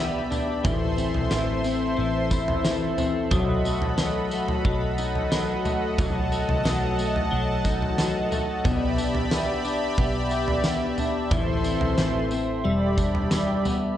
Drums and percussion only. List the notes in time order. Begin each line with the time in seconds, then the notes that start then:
0.32 floor tom, tambourine
0.65 kick, floor tom, tambourine
0.98 tambourine
1.14 floor tom
1.31 snare, tambourine
1.64 tambourine
2.31 kick, tambourine
2.48 floor tom
2.65 snare, tambourine
2.98 floor tom, tambourine
3.31 kick, floor tom, tambourine
3.65 tambourine
3.82 floor tom
3.98 snare, tambourine
4.31 tambourine
4.48 floor tom
4.65 kick
4.98 tambourine
5.15 floor tom
5.32 snare, tambourine
5.65 floor tom, tambourine
5.98 kick, floor tom, tambourine
6.32 tambourine
6.49 floor tom
6.65 snare, tambourine
6.99 tambourine
7.16 floor tom
7.65 kick, tambourine
7.82 floor tom
7.98 snare, tambourine
8.32 floor tom, tambourine
8.65 kick, floor tom, tambourine
8.98 tambourine
9.15 floor tom
9.31 snare, tambourine
9.65 tambourine
9.98 kick
10.31 tambourine
10.48 floor tom
10.64 snare, tambourine
10.98 floor tom, tambourine
11.31 kick, floor tom, tambourine
11.64 tambourine
11.81 floor tom
11.98 snare, tambourine
12.31 tambourine
12.98 kick, tambourine
13.15 floor tom
13.31 snare, tambourine
13.65 floor tom, tambourine